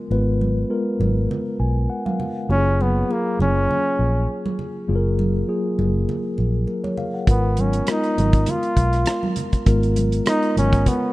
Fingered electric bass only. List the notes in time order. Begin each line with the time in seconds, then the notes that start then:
0.10 G#1
1.00 G#1
1.60 B1
2.49 F#1
3.39 F#1
3.99 A#1
4.89 F#1
5.79 F#1
6.38 A#1
7.27 G#1
8.18 G#1
8.77 B1
9.67 G#1
10.57 G#1